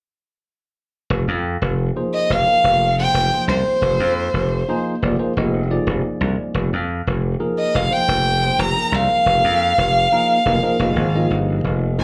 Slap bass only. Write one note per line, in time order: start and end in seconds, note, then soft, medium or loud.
1.10 1.25 F1 medium
1.28 1.56 F2 medium
1.62 1.90 F1 medium
2.30 2.44 F1 medium
2.64 3.06 F1 medium
3.14 3.29 F1 medium
3.48 3.63 C2 medium
3.82 3.97 F1 medium
4.00 4.28 F2 medium
4.34 4.62 F1 medium
5.02 5.16 F1 medium
5.37 5.78 F1 medium
5.87 6.02 F1 medium
6.21 6.36 C2 medium
6.54 6.69 F1 medium
6.73 7.01 F2 medium
7.07 7.35 F1 medium
7.75 7.88 F1 medium
8.08 8.50 F1 medium
8.59 8.73 F1 medium
8.92 9.07 C2 medium
9.26 9.41 F1 medium
9.44 9.72 F2 medium
9.78 10.06 F1 medium
10.46 10.59 F1 medium
10.79 10.93 F1 medium
10.96 11.27 G#1 medium
11.30 11.61 G1 medium
11.64 11.95 F1 medium
11.99 12.04 F1 medium